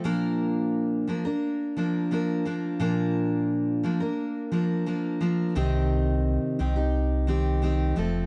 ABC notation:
X:1
M:4/4
L:1/16
Q:1/4=87
K:Bb
V:1 name="Steel-string acoustic guitar"
[B,,F,B,DB]6 [F,B,DB] [B,DB]3 [F,B,DB]2 [F,B,DB]2 [F,B,DB]2 | [B,,F,B,DB]6 [F,B,DB] [B,DB]3 [F,B,DB]2 [F,B,DB]2 [F,B,DB]2 | [C,E,CEG]6 [E,CEG] [CEG]3 [E,CEG]2 [E,CEG]2 [F,A,CA]2 |]
V:2 name="Sub bass" clef=bass
z16 | z16 | C,,4- C,, z C,,8 F,,,2 |]